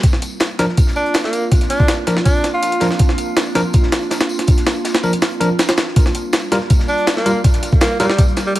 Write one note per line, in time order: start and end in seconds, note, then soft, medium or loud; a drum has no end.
0.03 0.76 C2 medium
0.03 8.59 A#3 medium
0.03 5.92 C4 medium
0.03 8.59 D4 medium
0.03 8.59 F4 medium
0.03 kick loud
0.03 closed hi-hat medium
0.03 tambourine medium
0.13 snare soft
0.22 closed hi-hat medium
0.22 tambourine medium
0.40 snare loud
0.40 closed hi-hat medium
0.40 tambourine medium
0.59 0.64 F3 medium
0.59 0.64 D4 medium
0.59 0.64 A#4 loud
0.59 snare medium
0.59 closed hi-hat medium
0.59 tambourine medium
0.69 snare soft
0.77 kick loud
0.77 closed hi-hat medium
0.77 tambourine medium
0.87 snare medium
0.96 1.19 D4 medium
0.96 tambourine medium
1.06 closed hi-hat soft
1.14 1.50 G1 loud
1.14 snare loud
1.14 closed hi-hat medium
1.14 tambourine medium
1.24 1.46 A#3 medium
1.24 snare soft
1.33 closed hi-hat medium
1.33 tambourine medium
1.52 2.27 C2 medium
1.52 kick loud
1.52 closed hi-hat medium
1.52 tambourine medium
1.61 snare soft
1.61 closed hi-hat soft
1.70 1.93 D4 medium
1.70 closed hi-hat medium
1.70 tambourine medium
1.80 kick medium
1.80 closed hi-hat soft
1.88 snare loud
1.88 closed hi-hat medium
1.88 tambourine medium
2.07 2.15 F3 medium
2.07 2.15 D4 medium
2.07 2.15 A#4 medium
2.07 snare soft
2.07 closed hi-hat medium
2.07 tambourine medium
2.17 snare medium
2.25 2.46 G1 loud
2.25 2.48 D4 medium
2.25 kick loud
2.25 closed hi-hat medium
2.25 tambourine medium
2.35 closed hi-hat soft
2.44 2.53 F2 medium
2.44 snare soft
2.44 closed hi-hat medium
2.44 tambourine medium
2.54 2.91 F4 medium
2.63 closed hi-hat medium
2.63 tambourine medium
2.72 closed hi-hat soft
2.80 2.98 C2 medium
2.80 2.86 F3 medium
2.80 2.86 D4 medium
2.80 2.86 A#4 medium
2.80 snare loud
2.80 closed hi-hat medium
2.80 tambourine medium
2.91 snare soft
2.99 3.72 C2 loud
2.99 kick loud
2.99 closed hi-hat medium
2.99 tambourine medium
3.09 snare soft
3.18 closed hi-hat medium
3.18 tambourine medium
3.37 snare loud
3.37 closed hi-hat medium
3.37 tambourine medium
3.55 3.60 F3 medium
3.55 3.60 D4 medium
3.55 3.60 A#4 loud
3.55 snare medium
3.55 closed hi-hat medium
3.55 tambourine medium
3.73 kick loud
3.73 closed hi-hat medium
3.73 tambourine medium
3.83 snare medium
3.92 snare loud
3.92 closed hi-hat medium
3.92 tambourine medium
4.02 closed hi-hat soft
4.11 4.47 G1 loud
4.11 snare loud
4.11 snare soft
4.11 closed hi-hat medium
4.11 tambourine medium
4.21 snare loud
4.21 closed hi-hat medium
4.29 tambourine medium
4.39 snare soft
4.39 closed hi-hat medium
4.47 5.24 C2 medium
4.47 kick loud
4.47 closed hi-hat medium
4.47 tambourine medium
4.57 snare soft
4.57 closed hi-hat soft
4.67 snare loud
4.67 closed hi-hat medium
4.67 tambourine medium
4.76 closed hi-hat soft
4.85 snare loud
4.85 closed hi-hat medium
4.85 tambourine medium
4.95 snare loud
4.95 closed hi-hat medium
5.03 5.11 F3 medium
5.03 5.11 D4 medium
5.03 5.11 A#4 medium
5.03 tambourine medium
5.13 closed hi-hat medium
5.22 snare loud
5.22 closed hi-hat medium
5.22 tambourine medium
5.31 closed hi-hat soft
5.41 5.48 F3 medium
5.41 5.48 D4 medium
5.41 5.48 A#4 medium
5.41 closed hi-hat medium
5.41 tambourine medium
5.59 snare loud
5.59 closed hi-hat medium
5.59 tambourine medium
5.69 snare loud
5.69 closed hi-hat medium
5.77 5.95 C2 loud
5.77 snare loud
5.77 closed hi-hat medium
5.77 tambourine medium
5.88 snare soft
5.96 6.69 G1 loud
5.96 8.59 G3 medium
5.96 kick loud
5.96 closed hi-hat medium
5.96 tambourine medium
6.06 snare soft
6.15 closed hi-hat medium
6.15 tambourine medium
6.33 snare loud
6.33 closed hi-hat medium
6.33 tambourine medium
6.52 6.57 G3 medium
6.52 6.57 F4 medium
6.52 6.57 A#4 medium
6.52 snare medium
6.52 closed hi-hat medium
6.52 tambourine medium
6.60 snare soft
6.70 kick loud
6.70 closed hi-hat medium
6.70 tambourine medium
6.79 snare medium
6.88 7.11 D4 medium
6.88 tambourine medium
6.98 closed hi-hat soft
7.07 7.43 D2 loud
7.07 snare loud
7.07 closed hi-hat medium
7.07 tambourine medium
7.16 7.39 A#3 medium
7.16 snare soft
7.26 7.31 G3 medium
7.26 7.31 F4 medium
7.26 7.31 A#4 medium
7.26 closed hi-hat medium
7.26 tambourine medium
7.44 8.20 G1 medium
7.44 kick loud
7.44 closed hi-hat medium
7.44 tambourine medium
7.54 snare soft
7.54 closed hi-hat soft
7.63 closed hi-hat medium
7.63 tambourine medium
7.72 kick medium
7.72 closed hi-hat soft
7.81 7.98 A#3 medium
7.81 snare loud
7.81 closed hi-hat medium
7.81 tambourine medium
8.00 8.05 G3 medium
8.00 8.22 G3 medium
8.00 8.05 F4 medium
8.00 8.05 A#4 loud
8.00 snare soft
8.00 closed hi-hat medium
8.00 tambourine medium
8.10 snare medium
8.18 kick loud
8.18 closed hi-hat medium
8.18 tambourine medium
8.28 closed hi-hat soft
8.37 snare soft
8.37 closed hi-hat medium
8.37 tambourine medium
8.46 8.52 G3 medium
8.55 8.59 G3 medium
8.55 closed hi-hat medium
8.55 tambourine medium